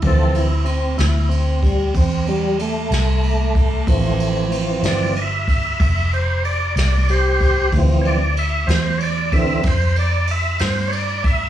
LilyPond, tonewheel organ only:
<<
  \new Staff \with { instrumentName = "Tonewheel organ" } { \time 12/8 \key d \dorian \tempo 4. = 62 a'8 e'8 c'8 e'8 c'8 g8 c'8 g8 a2~ | a4 r8 d''8 <dis'' e''>4. c''8 d''8 d''8 <g' c''>4 | r8 <cis'' d''>8 e''8 c''8 <cis'' d''>8 e''8 c''8 d''8 e''8 c''8 <cis'' d''>8 e''8 | }
  \new Staff \with { instrumentName = "Tonewheel organ" } { \clef bass \time 12/8 \key d \dorian <e f c'>8 r1 r4. | <e f c'>4. <e f c'>8 r1 | <e f c'>8 r2 <d e c'>8 r2. | }
>>